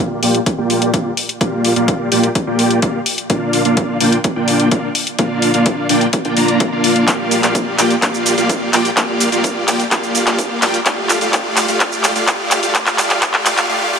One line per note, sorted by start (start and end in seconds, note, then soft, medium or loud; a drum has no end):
0.00 0.20 A#3 medium
0.00 0.20 F4 medium
0.00 0.20 G4 medium
0.00 0.20 D5 medium
0.00 0.20 F5 medium
0.23 0.39 A#3 medium
0.23 0.39 F4 medium
0.23 0.39 G4 medium
0.23 0.39 D5 medium
0.23 0.39 G5 loud
0.23 open hi-hat loud
0.35 closed hi-hat medium
0.46 kick loud
0.46 closed hi-hat medium
0.58 0.91 A#3 medium
0.58 0.91 F4 medium
0.58 0.91 G4 medium
0.58 0.91 D5 medium
0.58 0.91 G5 medium
0.70 open hi-hat loud
0.82 closed hi-hat medium
0.93 1.10 A#3 medium
0.93 1.10 F4 medium
0.93 1.10 G4 medium
0.93 1.10 D5 medium
0.93 1.10 F5 medium
0.93 kick loud
0.93 closed hi-hat medium
1.17 open hi-hat loud
1.29 closed hi-hat medium
1.41 1.73 A#3 medium
1.41 1.73 F4 medium
1.41 1.73 G4 medium
1.41 1.73 D5 medium
1.41 1.73 F5 medium
1.41 kick loud
1.41 closed hi-hat medium
1.65 open hi-hat loud
1.76 2.09 A#3 medium
1.76 2.09 F4 medium
1.76 2.09 G4 medium
1.76 2.09 D5 medium
1.76 2.09 F5 medium
1.76 closed hi-hat medium
1.88 kick loud
1.88 closed hi-hat medium
2.12 2.28 A#3 medium
2.12 2.28 F4 medium
2.12 2.28 G4 medium
2.12 2.28 D5 medium
2.12 2.28 G5 loud
2.12 open hi-hat loud
2.23 closed hi-hat medium
2.35 kick loud
2.35 closed hi-hat medium
2.47 2.80 A#3 medium
2.47 2.80 F4 medium
2.47 2.80 G4 medium
2.47 2.80 D5 medium
2.47 2.80 G5 medium
2.59 open hi-hat loud
2.71 closed hi-hat medium
2.82 2.99 A#3 medium
2.82 2.99 F4 medium
2.82 2.99 G4 medium
2.82 2.99 D5 medium
2.82 2.99 F5 medium
2.82 kick loud
2.82 closed hi-hat medium
3.06 open hi-hat loud
3.18 closed hi-hat medium
3.30 3.62 A#3 medium
3.30 3.62 D4 medium
3.30 3.62 F4 medium
3.30 3.63 D5 medium
3.30 3.62 F5 loud
3.30 kick loud
3.30 closed hi-hat medium
3.53 open hi-hat loud
3.65 3.98 A#3 medium
3.65 3.98 D4 medium
3.65 3.98 F4 medium
3.65 3.98 D5 medium
3.65 3.98 F5 medium
3.65 closed hi-hat medium
3.77 kick loud
3.77 closed hi-hat medium
4.01 4.17 A#3 medium
4.01 4.17 D4 medium
4.01 4.17 F4 medium
4.01 4.17 D5 medium
4.01 4.17 G5 loud
4.01 open hi-hat loud
4.12 closed hi-hat medium
4.24 kick loud
4.24 closed hi-hat medium
4.36 4.69 A#3 medium
4.36 4.69 D4 medium
4.36 4.69 F4 medium
4.36 4.69 D5 medium
4.36 4.69 G5 medium
4.48 open hi-hat loud
4.60 closed hi-hat soft
4.71 4.88 A#3 medium
4.71 4.88 D4 medium
4.71 4.88 F4 medium
4.71 4.88 D5 medium
4.71 4.88 F5 medium
4.71 kick loud
4.71 closed hi-hat medium
4.95 open hi-hat loud
5.07 closed hi-hat soft
5.19 5.51 A#3 medium
5.19 5.51 D4 medium
5.19 5.51 F4 medium
5.19 5.51 D5 medium
5.19 5.51 F5 medium
5.19 kick loud
5.19 closed hi-hat medium
5.42 open hi-hat loud
5.54 5.87 A#3 medium
5.54 5.87 D4 medium
5.54 5.87 F4 medium
5.54 5.87 D5 medium
5.54 5.87 F5 medium
5.54 closed hi-hat soft
5.66 kick loud
5.66 closed hi-hat medium
5.89 6.06 A#3 medium
5.89 6.06 D4 medium
5.89 6.06 F4 medium
5.89 6.06 D5 medium
5.89 6.06 G5 loud
5.89 open hi-hat loud
6.01 closed hi-hat soft
6.13 kick loud
6.13 closed hi-hat medium
6.25 6.35 A#3 medium
6.25 6.35 D4 medium
6.25 6.35 F4 medium
6.25 6.35 D5 medium
6.25 6.35 G5 medium
6.25 closed hi-hat soft
6.37 6.70 A#3 medium
6.37 6.70 D4 medium
6.37 6.70 F4 medium
6.37 6.70 D5 medium
6.37 6.70 A#5 medium
6.37 open hi-hat loud
6.48 closed hi-hat soft
6.60 kick loud
6.60 closed hi-hat medium
6.72 7.05 A#3 medium
6.72 7.05 D4 medium
6.72 7.05 F4 medium
6.72 7.05 D5 medium
6.72 7.05 F5 loud
6.84 open hi-hat loud
6.96 closed hi-hat soft
7.08 7.40 A#3 medium
7.08 7.40 F4 medium
7.08 7.40 G4 medium
7.08 7.40 D5 medium
7.08 7.40 F5 medium
7.08 kick loud
7.08 clap soft
7.08 closed hi-hat medium
7.08 shaker soft
7.31 open hi-hat loud
7.31 shaker medium
7.43 7.76 A#3 medium
7.43 7.76 F4 medium
7.43 7.76 G4 medium
7.43 7.76 D5 medium
7.43 7.76 F5 medium
7.43 clap soft
7.43 closed hi-hat medium
7.43 shaker soft
7.55 kick loud
7.55 closed hi-hat medium
7.55 shaker soft
7.79 7.95 A#3 medium
7.79 7.95 F4 medium
7.79 7.95 G4 medium
7.79 7.95 D5 medium
7.79 7.95 G5 loud
7.79 clap medium
7.79 open hi-hat loud
7.79 shaker medium
7.90 closed hi-hat soft
7.90 shaker soft
8.02 8.35 A#3 medium
8.02 8.35 F4 medium
8.02 8.35 G4 medium
8.02 8.35 D5 medium
8.02 8.35 F5 medium
8.02 kick loud
8.02 clap medium
8.02 closed hi-hat medium
8.02 shaker soft
8.14 shaker soft
8.26 open hi-hat loud
8.26 shaker medium
8.38 8.70 A#3 medium
8.38 8.70 F4 medium
8.38 8.70 G4 medium
8.38 8.70 D5 medium
8.38 8.70 F5 medium
8.38 closed hi-hat medium
8.38 shaker soft
8.49 kick loud
8.49 closed hi-hat medium
8.49 shaker soft
8.73 8.90 A#3 medium
8.73 8.90 F4 medium
8.73 8.90 G4 medium
8.73 8.90 D5 medium
8.73 8.90 G5 loud
8.73 clap medium
8.73 open hi-hat loud
8.73 shaker medium
8.85 closed hi-hat medium
8.85 shaker soft
8.97 9.29 A#3 medium
8.97 9.29 F4 medium
8.97 9.29 G4 medium
8.97 9.29 D5 medium
8.97 9.29 F5 medium
8.97 kick loud
8.97 clap medium
8.97 closed hi-hat medium
8.97 shaker soft
9.20 open hi-hat loud
9.20 shaker medium
9.32 9.65 A#3 medium
9.32 9.65 F4 medium
9.32 9.65 G4 medium
9.32 9.65 D5 medium
9.32 9.65 F5 medium
9.32 closed hi-hat medium
9.32 shaker soft
9.44 kick loud
9.44 closed hi-hat medium
9.44 shaker soft
9.68 9.84 A#3 medium
9.68 9.84 F4 medium
9.68 9.84 G4 medium
9.68 9.84 D5 medium
9.68 9.84 G5 loud
9.68 clap medium
9.68 open hi-hat loud
9.68 shaker medium
9.80 closed hi-hat medium
9.80 shaker soft
9.91 10.24 A#3 medium
9.91 10.24 F4 medium
9.91 10.24 G4 medium
9.91 10.24 D5 medium
9.91 10.24 F5 loud
9.91 kick loud
9.91 clap medium
9.91 closed hi-hat medium
9.91 shaker soft
10.03 shaker soft
10.15 open hi-hat loud
10.15 shaker medium
10.27 10.59 A#3 medium
10.27 10.59 F4 medium
10.27 10.59 G4 medium
10.27 10.59 D5 medium
10.27 10.59 F5 medium
10.27 clap medium
10.27 closed hi-hat medium
10.27 shaker soft
10.39 kick loud
10.39 closed hi-hat medium
10.39 shaker soft
10.62 10.79 A#3 medium
10.62 10.79 F4 medium
10.62 10.79 G4 medium
10.62 10.79 D5 medium
10.62 10.79 G5 loud
10.62 clap medium
10.62 open hi-hat loud
10.62 shaker medium
10.74 closed hi-hat medium
10.74 shaker soft
10.86 11.18 A3 medium
10.86 11.18 F4 medium
10.86 11.18 G4 medium
10.86 11.18 D5 medium
10.86 11.18 F5 loud
10.86 kick loud
10.86 clap medium
10.86 closed hi-hat medium
10.86 shaker soft
11.09 clap medium
11.09 open hi-hat loud
11.09 shaker medium
11.21 11.31 A3 medium
11.21 11.31 F4 medium
11.21 11.31 G4 medium
11.21 11.31 D5 medium
11.21 11.31 F5 medium
11.21 closed hi-hat medium
11.21 shaker soft
11.33 11.66 A3 medium
11.33 11.66 F4 medium
11.33 11.66 G4 medium
11.33 11.66 D5 medium
11.33 11.66 F5 loud
11.33 kick loud
11.33 clap medium
11.33 closed hi-hat medium
11.33 shaker soft
11.57 clap medium
11.57 open hi-hat loud
11.57 shaker medium
11.68 11.78 A3 medium
11.68 11.78 F4 medium
11.68 11.78 G4 medium
11.68 11.78 D5 medium
11.68 11.78 F5 medium
11.68 closed hi-hat medium
11.68 shaker soft
11.80 12.13 A3 medium
11.80 12.13 F4 medium
11.80 12.13 G4 medium
11.80 12.13 D5 medium
11.80 12.13 F5 loud
11.80 kick loud
11.80 clap medium
11.80 closed hi-hat medium
11.80 shaker soft
11.92 shaker soft
12.04 clap medium
12.04 open hi-hat loud
12.04 shaker medium
12.16 12.26 A3 medium
12.16 12.26 F4 medium
12.16 12.26 G4 medium
12.16 12.26 D5 medium
12.16 12.26 F5 medium
12.16 closed hi-hat medium
12.16 shaker soft
12.27 12.60 A3 medium
12.27 12.60 F4 medium
12.27 12.60 G4 medium
12.27 12.60 D5 medium
12.27 12.60 F5 loud
12.27 kick loud
12.27 clap medium
12.27 closed hi-hat medium
12.27 shaker soft
12.51 clap medium
12.51 open hi-hat loud
12.51 shaker medium
12.63 12.73 A3 medium
12.63 12.73 F4 medium
12.63 12.73 G4 medium
12.63 12.73 D5 medium
12.63 12.73 F5 medium
12.63 closed hi-hat medium
12.63 shaker soft
12.75 12.97 A3 medium
12.75 12.97 F4 medium
12.75 12.97 G4 medium
12.75 12.97 D5 medium
12.75 12.97 F5 loud
12.75 kick loud
12.75 clap medium
12.75 closed hi-hat medium
12.75 shaker soft
12.86 clap medium
12.86 closed hi-hat soft
12.86 shaker soft
12.98 13.20 A3 medium
12.98 13.20 F4 medium
12.98 13.20 G4 medium
12.98 13.20 D5 medium
12.98 13.20 F5 loud
12.98 clap medium
12.98 open hi-hat loud
12.98 shaker medium
13.10 clap medium
13.10 closed hi-hat medium
13.10 shaker soft
13.22 13.44 A3 medium
13.22 13.44 F4 medium
13.22 13.44 G4 medium
13.22 13.44 D5 medium
13.22 13.44 F5 loud
13.22 kick loud
13.22 clap medium
13.22 closed hi-hat medium
13.22 shaker soft
13.34 clap medium
13.34 closed hi-hat soft
13.46 13.67 A3 medium
13.46 13.67 F4 medium
13.46 13.67 G4 medium
13.46 13.67 D5 medium
13.46 13.67 F5 loud
13.46 clap loud
13.46 open hi-hat loud
13.46 shaker medium
13.57 clap medium
13.57 closed hi-hat medium
13.57 shaker soft
13.69 13.91 A3 medium
13.69 13.91 F4 medium
13.69 13.91 G4 medium
13.69 13.91 D5 medium
13.69 13.91 F5 loud
13.93 13.99 A3 medium
13.93 13.99 F4 medium
13.93 13.99 G4 medium
13.93 13.99 D5 medium
13.93 13.99 F5 loud